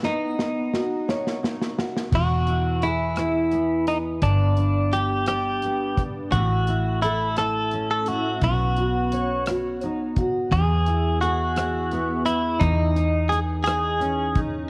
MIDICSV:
0, 0, Header, 1, 5, 480
1, 0, Start_track
1, 0, Tempo, 699301
1, 16, Time_signature, 6, 3, 24, 8
1, 10089, End_track
2, 0, Start_track
2, 0, Title_t, "Clean electric guitar"
2, 0, Program_c, 0, 27
2, 32, Note_on_c, 0, 63, 50
2, 958, Note_off_c, 0, 63, 0
2, 1476, Note_on_c, 0, 66, 65
2, 1944, Note_on_c, 0, 64, 63
2, 1962, Note_off_c, 0, 66, 0
2, 2660, Note_off_c, 0, 64, 0
2, 2662, Note_on_c, 0, 63, 59
2, 2727, Note_off_c, 0, 63, 0
2, 2903, Note_on_c, 0, 62, 66
2, 3384, Note_on_c, 0, 67, 70
2, 3396, Note_off_c, 0, 62, 0
2, 3616, Note_off_c, 0, 67, 0
2, 3625, Note_on_c, 0, 67, 68
2, 4134, Note_off_c, 0, 67, 0
2, 4338, Note_on_c, 0, 66, 76
2, 4817, Note_off_c, 0, 66, 0
2, 4820, Note_on_c, 0, 64, 68
2, 5064, Note_off_c, 0, 64, 0
2, 5067, Note_on_c, 0, 69, 83
2, 5420, Note_off_c, 0, 69, 0
2, 5428, Note_on_c, 0, 69, 89
2, 5546, Note_off_c, 0, 69, 0
2, 5546, Note_on_c, 0, 66, 71
2, 5784, Note_off_c, 0, 66, 0
2, 5792, Note_on_c, 0, 66, 81
2, 6477, Note_off_c, 0, 66, 0
2, 7224, Note_on_c, 0, 68, 77
2, 7693, Note_off_c, 0, 68, 0
2, 7696, Note_on_c, 0, 66, 71
2, 8410, Note_off_c, 0, 66, 0
2, 8413, Note_on_c, 0, 64, 74
2, 8646, Note_on_c, 0, 63, 76
2, 8661, Note_off_c, 0, 64, 0
2, 9123, Note_on_c, 0, 68, 77
2, 9145, Note_off_c, 0, 63, 0
2, 9190, Note_off_c, 0, 68, 0
2, 9362, Note_on_c, 0, 68, 76
2, 9880, Note_off_c, 0, 68, 0
2, 10089, End_track
3, 0, Start_track
3, 0, Title_t, "Steel-string acoustic guitar"
3, 0, Program_c, 1, 25
3, 0, Note_on_c, 1, 59, 42
3, 27, Note_off_c, 1, 59, 0
3, 27, Note_on_c, 1, 59, 46
3, 263, Note_on_c, 1, 63, 39
3, 504, Note_on_c, 1, 66, 45
3, 742, Note_on_c, 1, 73, 44
3, 973, Note_off_c, 1, 63, 0
3, 981, Note_on_c, 1, 63, 40
3, 1214, Note_off_c, 1, 66, 0
3, 1222, Note_on_c, 1, 66, 36
3, 1466, Note_on_c, 1, 40, 59
3, 1508, Note_off_c, 1, 63, 0
3, 1508, Note_off_c, 1, 66, 0
3, 1509, Note_off_c, 1, 73, 0
3, 1703, Note_on_c, 1, 64, 43
3, 1944, Note_on_c, 1, 68, 50
3, 2172, Note_off_c, 1, 64, 0
3, 2181, Note_on_c, 1, 64, 46
3, 2422, Note_off_c, 1, 59, 0
3, 2422, Note_on_c, 1, 59, 47
3, 2660, Note_off_c, 1, 64, 0
3, 2903, Note_off_c, 1, 40, 0
3, 2907, Note_on_c, 1, 43, 62
3, 2950, Note_off_c, 1, 68, 0
3, 3143, Note_on_c, 1, 62, 48
3, 3383, Note_on_c, 1, 67, 59
3, 3615, Note_off_c, 1, 62, 0
3, 3624, Note_on_c, 1, 62, 45
3, 3870, Note_off_c, 1, 59, 0
3, 3872, Note_on_c, 1, 59, 47
3, 4097, Note_off_c, 1, 62, 0
3, 4106, Note_on_c, 1, 62, 47
3, 4343, Note_off_c, 1, 43, 0
3, 4348, Note_on_c, 1, 45, 63
3, 4389, Note_off_c, 1, 67, 0
3, 4390, Note_off_c, 1, 62, 0
3, 4394, Note_off_c, 1, 59, 0
3, 4589, Note_on_c, 1, 64, 47
3, 4831, Note_on_c, 1, 69, 58
3, 5062, Note_off_c, 1, 64, 0
3, 5070, Note_on_c, 1, 64, 52
3, 5309, Note_on_c, 1, 61, 51
3, 5541, Note_off_c, 1, 64, 0
3, 5549, Note_on_c, 1, 64, 48
3, 5783, Note_off_c, 1, 45, 0
3, 5789, Note_on_c, 1, 59, 64
3, 5832, Note_off_c, 1, 64, 0
3, 5833, Note_off_c, 1, 69, 0
3, 6027, Note_on_c, 1, 66, 52
3, 6263, Note_on_c, 1, 73, 54
3, 6502, Note_off_c, 1, 66, 0
3, 6513, Note_on_c, 1, 66, 48
3, 6747, Note_off_c, 1, 61, 0
3, 6750, Note_on_c, 1, 63, 46
3, 6979, Note_off_c, 1, 66, 0
3, 6988, Note_on_c, 1, 66, 47
3, 7226, Note_on_c, 1, 40, 58
3, 7268, Note_off_c, 1, 73, 0
3, 7270, Note_off_c, 1, 66, 0
3, 7272, Note_off_c, 1, 63, 0
3, 7464, Note_on_c, 1, 64, 49
3, 7705, Note_on_c, 1, 68, 55
3, 7931, Note_off_c, 1, 64, 0
3, 7934, Note_on_c, 1, 64, 47
3, 8183, Note_off_c, 1, 59, 0
3, 8183, Note_on_c, 1, 59, 49
3, 8411, Note_off_c, 1, 64, 0
3, 8414, Note_on_c, 1, 64, 49
3, 8639, Note_off_c, 1, 40, 0
3, 8648, Note_on_c, 1, 40, 64
3, 8707, Note_off_c, 1, 59, 0
3, 8892, Note_off_c, 1, 64, 0
3, 8895, Note_on_c, 1, 63, 48
3, 9135, Note_off_c, 1, 68, 0
3, 9138, Note_on_c, 1, 68, 58
3, 9370, Note_off_c, 1, 63, 0
3, 9379, Note_on_c, 1, 63, 52
3, 9611, Note_on_c, 1, 61, 49
3, 9853, Note_off_c, 1, 63, 0
3, 9861, Note_on_c, 1, 63, 52
3, 10089, Note_off_c, 1, 40, 0
3, 10089, Note_off_c, 1, 61, 0
3, 10089, Note_off_c, 1, 63, 0
3, 10089, Note_off_c, 1, 68, 0
3, 10089, End_track
4, 0, Start_track
4, 0, Title_t, "Fingered electric bass"
4, 0, Program_c, 2, 33
4, 1454, Note_on_c, 2, 28, 68
4, 2869, Note_off_c, 2, 28, 0
4, 2895, Note_on_c, 2, 31, 67
4, 4310, Note_off_c, 2, 31, 0
4, 4337, Note_on_c, 2, 33, 72
4, 5750, Note_off_c, 2, 33, 0
4, 5778, Note_on_c, 2, 35, 85
4, 7190, Note_off_c, 2, 35, 0
4, 7216, Note_on_c, 2, 40, 79
4, 8628, Note_off_c, 2, 40, 0
4, 8656, Note_on_c, 2, 40, 76
4, 10067, Note_off_c, 2, 40, 0
4, 10089, End_track
5, 0, Start_track
5, 0, Title_t, "Drums"
5, 21, Note_on_c, 9, 38, 34
5, 90, Note_off_c, 9, 38, 0
5, 268, Note_on_c, 9, 38, 46
5, 336, Note_off_c, 9, 38, 0
5, 505, Note_on_c, 9, 38, 53
5, 574, Note_off_c, 9, 38, 0
5, 748, Note_on_c, 9, 38, 57
5, 817, Note_off_c, 9, 38, 0
5, 871, Note_on_c, 9, 38, 50
5, 940, Note_off_c, 9, 38, 0
5, 990, Note_on_c, 9, 38, 59
5, 1059, Note_off_c, 9, 38, 0
5, 1109, Note_on_c, 9, 38, 57
5, 1177, Note_off_c, 9, 38, 0
5, 1226, Note_on_c, 9, 38, 70
5, 1295, Note_off_c, 9, 38, 0
5, 1349, Note_on_c, 9, 38, 60
5, 1418, Note_off_c, 9, 38, 0
5, 1458, Note_on_c, 9, 49, 66
5, 1459, Note_on_c, 9, 36, 79
5, 1526, Note_off_c, 9, 49, 0
5, 1528, Note_off_c, 9, 36, 0
5, 1695, Note_on_c, 9, 42, 42
5, 1764, Note_off_c, 9, 42, 0
5, 1937, Note_on_c, 9, 42, 52
5, 2005, Note_off_c, 9, 42, 0
5, 2168, Note_on_c, 9, 42, 57
5, 2177, Note_on_c, 9, 37, 68
5, 2237, Note_off_c, 9, 42, 0
5, 2246, Note_off_c, 9, 37, 0
5, 2413, Note_on_c, 9, 42, 37
5, 2482, Note_off_c, 9, 42, 0
5, 2657, Note_on_c, 9, 42, 53
5, 2725, Note_off_c, 9, 42, 0
5, 2895, Note_on_c, 9, 42, 70
5, 2898, Note_on_c, 9, 36, 82
5, 2964, Note_off_c, 9, 42, 0
5, 2967, Note_off_c, 9, 36, 0
5, 3135, Note_on_c, 9, 42, 44
5, 3204, Note_off_c, 9, 42, 0
5, 3382, Note_on_c, 9, 42, 55
5, 3450, Note_off_c, 9, 42, 0
5, 3613, Note_on_c, 9, 42, 65
5, 3622, Note_on_c, 9, 37, 65
5, 3681, Note_off_c, 9, 42, 0
5, 3690, Note_off_c, 9, 37, 0
5, 3859, Note_on_c, 9, 42, 37
5, 3927, Note_off_c, 9, 42, 0
5, 4101, Note_on_c, 9, 36, 74
5, 4103, Note_on_c, 9, 42, 50
5, 4170, Note_off_c, 9, 36, 0
5, 4172, Note_off_c, 9, 42, 0
5, 4338, Note_on_c, 9, 42, 77
5, 4339, Note_on_c, 9, 36, 82
5, 4406, Note_off_c, 9, 42, 0
5, 4408, Note_off_c, 9, 36, 0
5, 4579, Note_on_c, 9, 42, 46
5, 4647, Note_off_c, 9, 42, 0
5, 4823, Note_on_c, 9, 42, 51
5, 4891, Note_off_c, 9, 42, 0
5, 5056, Note_on_c, 9, 42, 64
5, 5065, Note_on_c, 9, 37, 76
5, 5125, Note_off_c, 9, 42, 0
5, 5134, Note_off_c, 9, 37, 0
5, 5294, Note_on_c, 9, 42, 34
5, 5362, Note_off_c, 9, 42, 0
5, 5533, Note_on_c, 9, 42, 53
5, 5602, Note_off_c, 9, 42, 0
5, 5776, Note_on_c, 9, 42, 74
5, 5779, Note_on_c, 9, 36, 84
5, 5845, Note_off_c, 9, 42, 0
5, 5848, Note_off_c, 9, 36, 0
5, 6017, Note_on_c, 9, 42, 46
5, 6085, Note_off_c, 9, 42, 0
5, 6260, Note_on_c, 9, 42, 55
5, 6328, Note_off_c, 9, 42, 0
5, 6493, Note_on_c, 9, 42, 71
5, 6502, Note_on_c, 9, 37, 73
5, 6562, Note_off_c, 9, 42, 0
5, 6571, Note_off_c, 9, 37, 0
5, 6736, Note_on_c, 9, 42, 35
5, 6805, Note_off_c, 9, 42, 0
5, 6976, Note_on_c, 9, 42, 57
5, 6978, Note_on_c, 9, 36, 78
5, 7045, Note_off_c, 9, 42, 0
5, 7047, Note_off_c, 9, 36, 0
5, 7219, Note_on_c, 9, 36, 88
5, 7221, Note_on_c, 9, 42, 69
5, 7288, Note_off_c, 9, 36, 0
5, 7290, Note_off_c, 9, 42, 0
5, 7456, Note_on_c, 9, 42, 46
5, 7525, Note_off_c, 9, 42, 0
5, 7704, Note_on_c, 9, 42, 57
5, 7772, Note_off_c, 9, 42, 0
5, 7937, Note_on_c, 9, 42, 67
5, 7946, Note_on_c, 9, 37, 77
5, 8006, Note_off_c, 9, 42, 0
5, 8015, Note_off_c, 9, 37, 0
5, 8178, Note_on_c, 9, 42, 38
5, 8246, Note_off_c, 9, 42, 0
5, 8417, Note_on_c, 9, 42, 60
5, 8485, Note_off_c, 9, 42, 0
5, 8653, Note_on_c, 9, 42, 70
5, 8656, Note_on_c, 9, 36, 90
5, 8722, Note_off_c, 9, 42, 0
5, 8725, Note_off_c, 9, 36, 0
5, 8898, Note_on_c, 9, 42, 48
5, 8967, Note_off_c, 9, 42, 0
5, 9144, Note_on_c, 9, 42, 56
5, 9212, Note_off_c, 9, 42, 0
5, 9377, Note_on_c, 9, 42, 69
5, 9386, Note_on_c, 9, 37, 78
5, 9446, Note_off_c, 9, 42, 0
5, 9455, Note_off_c, 9, 37, 0
5, 9618, Note_on_c, 9, 42, 40
5, 9687, Note_off_c, 9, 42, 0
5, 9852, Note_on_c, 9, 42, 53
5, 9854, Note_on_c, 9, 36, 81
5, 9921, Note_off_c, 9, 42, 0
5, 9923, Note_off_c, 9, 36, 0
5, 10089, End_track
0, 0, End_of_file